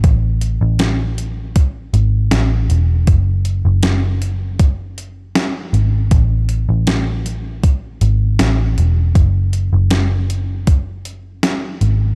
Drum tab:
HH |xxxxxxxx|xxxxxxxx|xxxxxxxx|xxxxxxxx|
SD |--o---o-|--o---o-|--o---o-|--o---o-|
BD |o---o---|o---o---|o---o---|o---o---|